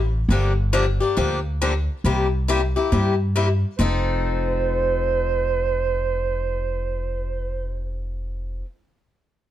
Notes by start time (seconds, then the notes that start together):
Already playing: A1
0.29 G1 D3 F3 A#3 D4 G4
0.73 D3 F3 A#3 D4 G4
1.00 A#3 D4 G4
1.17 D2 D3 F3 A#3 D4 G4
1.61 D3 F3 A#3 D4 G4
2.04 C2 C3 G3 A#3 E4 G4
2.48 C3 G3 A#3 E4 G4
2.76 A#3 E4 G4
2.92 G2 C3 G3 A#3 E4 G4
3.36 C3 G3 A#3 E4 G4
3.78 F1 F3 C4 D#4 A4 C5